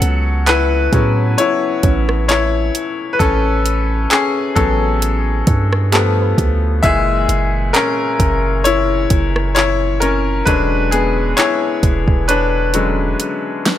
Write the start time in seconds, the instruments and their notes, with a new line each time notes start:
Already playing: grand piano F#3 B3 C#4 A4 F#5
0.02 808-style bass C#2, closed hi-hat
0.47 grand piano E4 B4, clap, closed hi-hat
0.93 808-style bass A2, grand piano F#3 B3 C#4, synth pluck G#4, kick, closed hi-hat
1.38 grand piano E4 C#5, closed hi-hat
1.83 808-style bass A1, synth pluck C#4, kick, closed hi-hat
2.09 cross-stick
2.28 grand piano E4 C#5, clap, closed hi-hat
2.75 closed hi-hat
3.13 grand piano B4
3.19 808-style bass A1, grand piano C#4 A4, kick, closed hi-hat
3.66 closed hi-hat
4.11 grand piano C#4 G#4, clap, closed hi-hat
4.56 808-style bass A1, grand piano F#3 B3 C#4 A4, kick, closed hi-hat
5.02 closed hi-hat
5.47 808-style bass G2, kick, closed hi-hat
5.73 cross-stick
5.92 grand piano F3 A3 B3, synth pluck G4, clap, closed hi-hat
6.22 synth pluck B4
6.38 808-style bass D2, kick, closed hi-hat
6.83 808-style bass F#1, grand piano A#2 E3 G#3 G#4 E5, kick, closed hi-hat
7.29 808-style bass F#1, closed hi-hat
7.73 grand piano C#4 A#4, clap, closed hi-hat
8.20 808-style bass F#1, kick, closed hi-hat
8.64 grand piano E4 C#5, closed hi-hat
9.10 808-style bass F#1, kick, closed hi-hat
9.36 cross-stick
9.55 grand piano E4 C#5, clap, closed hi-hat
10.00 grand piano C#4 A#4, closed hi-hat
10.45 808-style bass E1, grand piano D3 F#3 G#3 C#4 D4 B4, synth pluck B4, kick, closed hi-hat
10.91 grand piano B3 G#4, closed hi-hat
11.37 grand piano E4 C#5, clap, closed hi-hat
11.83 808-style bass E1, kick, closed hi-hat
12.08 808-style bass E1, kick
12.28 grand piano D4 B4, synth pluck C#5, closed hi-hat
12.74 grand piano D3 F#3 G#3 C#4, closed hi-hat
13.20 closed hi-hat
13.66 snare, closed hi-hat